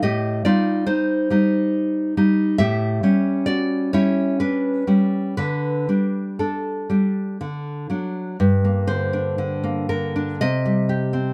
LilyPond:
\new Staff \with { instrumentName = "Nylon-string guitar" } { \time 3/4 \key g \minor \tempo 4 = 62 << { <g' ees''>8 <f' d''>8 <ees' c''>4. r8 | <g' e''>4 <fis' d''>8 <e' cis''>8 <d' b'>4 | <d' b'>4 <d' a'>4 r4 | r8 c''4 bes'8 ees''4 | } \\ { a,8 <g ees'>4 <g ees'>4 <g ees'>8 | a,8 <g cis'>4 <g cis'>4 <g cis'>8 | d8 <g d'>4 <g d'>8 d8 <fis d'>8 | g,16 bes16 d16 d'16 d16 bes16 d16 d'16 c16 g16 g'16 c'16 | } >> }